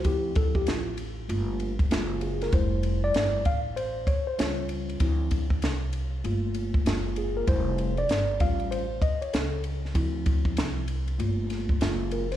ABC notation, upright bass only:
X:1
M:4/4
L:1/8
Q:"Swing 16ths" 1/4=97
K:Dm
V:1 name="Upright bass" clef=bass
D,,2 A,,,2 G,,,2 _G,,,2 | F,,,2 G,,, A,,,2 z ^C,,2 | D,,2 C,,2 G,,,2 _G,,,2 | F,,,2 G,,, A,,,2 z ^C,,2 |
D,,2 C,,2 G,,,2 _G,,,2 |]